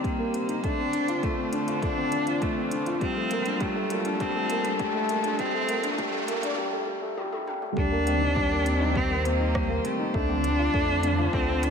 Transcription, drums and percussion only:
0.04 kick, closed hi-hat
0.34 closed hi-hat
0.49 closed hi-hat
0.64 kick, closed hi-hat
0.93 closed hi-hat
1.08 closed hi-hat
1.23 kick, closed hi-hat
1.53 closed hi-hat
1.68 closed hi-hat
1.82 kick, closed hi-hat
2.12 closed hi-hat
2.27 closed hi-hat
2.42 kick, closed hi-hat
2.71 closed hi-hat
2.86 closed hi-hat
3.01 kick, closed hi-hat
3.31 closed hi-hat
3.46 closed hi-hat
3.60 kick, closed hi-hat
3.90 closed hi-hat
4.05 closed hi-hat
4.20 kick, closed hi-hat
4.50 closed hi-hat
4.65 closed hi-hat
4.79 kick, closed hi-hat
5.09 closed hi-hat
5.24 closed hi-hat
5.39 kick, closed hi-hat
5.69 closed hi-hat
5.84 closed hi-hat
5.98 kick, closed hi-hat
6.28 closed hi-hat
6.43 closed hi-hat
7.18 high tom
7.32 high tom
7.48 mid tom
7.62 mid tom
7.77 kick
8.07 closed hi-hat, mid tom
8.36 kick
8.66 closed hi-hat
8.81 mid tom
8.96 kick
9.25 closed hi-hat
9.55 kick, cross-stick, mid tom
9.85 closed hi-hat
10.14 kick
10.29 mid tom
10.44 closed hi-hat
10.74 kick
11.03 closed hi-hat, mid tom
11.33 kick
11.63 closed hi-hat

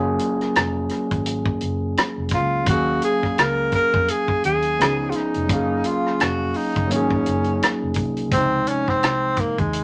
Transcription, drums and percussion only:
0.19 closed hi-hat
0.41 cross-stick, closed hi-hat
0.55 cross-stick, closed hi-hat
0.89 cross-stick, closed hi-hat
1.11 kick, closed hi-hat
1.26 closed hi-hat
1.46 kick
1.61 closed hi-hat
1.97 cross-stick, closed hi-hat
2.29 kick, closed hi-hat
2.33 cross-stick
2.66 kick, closed hi-hat
3.02 closed hi-hat
3.23 kick, cross-stick
3.38 cross-stick, closed hi-hat
3.72 kick, cross-stick, closed hi-hat
3.94 kick
4.08 closed hi-hat
4.28 kick
4.44 closed hi-hat
4.62 closed hi-hat
4.81 cross-stick, closed hi-hat
5.12 closed hi-hat
5.17 cross-stick
5.34 closed hi-hat
5.49 kick, closed hi-hat
5.84 closed hi-hat
6.06 cross-stick
6.20 cross-stick, closed hi-hat
6.54 open hi-hat
6.76 kick, closed hi-hat
6.91 closed hi-hat
7.10 kick
7.26 closed hi-hat
7.44 closed hi-hat
7.62 cross-stick, closed hi-hat
7.94 kick, closed hi-hat
8.17 closed hi-hat
8.31 kick, closed hi-hat
8.67 closed hi-hat
8.88 kick, cross-stick
9.03 cross-stick, closed hi-hat
9.36 kick, cross-stick, closed hi-hat
9.58 kick, closed hi-hat
9.73 closed hi-hat

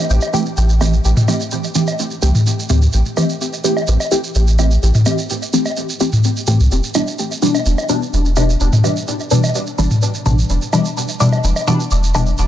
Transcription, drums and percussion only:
0.10 shekere
0.21 low woodblock, shekere
0.34 shekere
0.46 shekere
0.57 shekere
0.69 shekere
0.81 low woodblock, shekere
0.93 shekere
1.05 shekere
1.17 mid tom, shekere
1.28 low woodblock, shekere
1.40 shekere
1.51 shekere
1.64 shekere
1.75 shekere
1.87 low woodblock, shekere
1.99 shekere
2.10 shekere
2.22 shekere
2.35 mid tom, shekere
2.47 shekere
2.59 shekere
2.70 mid tom, shekere
2.82 shekere
2.93 shekere
3.06 shekere
3.17 low woodblock, shekere
3.29 shekere
3.41 shekere
3.53 shekere
3.64 shekere
3.77 low woodblock, shekere
3.87 shekere
4.00 low woodblock, shekere
4.11 shekere
4.24 shekere
4.35 shekere
4.47 shekere
4.59 low woodblock, shekere
4.71 shekere
4.83 shekere
4.94 mid tom, shekere
5.06 low woodblock, shekere
5.18 shekere
5.30 shekere
5.42 shekere
5.53 shekere
5.65 low woodblock, shekere
5.77 shekere
5.89 shekere
6.00 shekere
6.12 mid tom, shekere
6.24 shekere
6.37 shekere
6.47 mid tom, shekere
6.60 shekere
6.72 shekere
6.84 shekere
6.95 low woodblock, shekere
7.07 shekere
7.19 shekere
7.32 shekere
7.43 shekere
7.55 low woodblock, shekere
7.66 shekere
7.78 low woodblock, shekere
7.89 shekere
8.02 shekere
8.14 shekere
8.25 shekere
8.36 low woodblock, shekere
8.50 shekere
8.60 shekere
8.73 mid tom, shekere
8.84 low woodblock, shekere
8.97 shekere
9.08 shekere
9.20 shekere
9.31 shekere
9.44 low woodblock, shekere
9.55 shekere
9.67 shekere
9.79 shekere
9.91 mid tom, shekere
10.02 shekere
10.14 shekere
10.26 mid tom, shekere
10.39 shekere
10.49 shekere
10.62 shekere
10.73 low woodblock, shekere
10.85 shekere
10.97 shekere
11.08 shekere
11.20 shekere
11.33 low woodblock, shekere
11.44 shekere
11.56 low woodblock, shekere
11.68 shekere
11.80 shekere
11.91 shekere
12.04 shekere
12.15 low woodblock, shekere
12.27 shekere
12.38 shekere

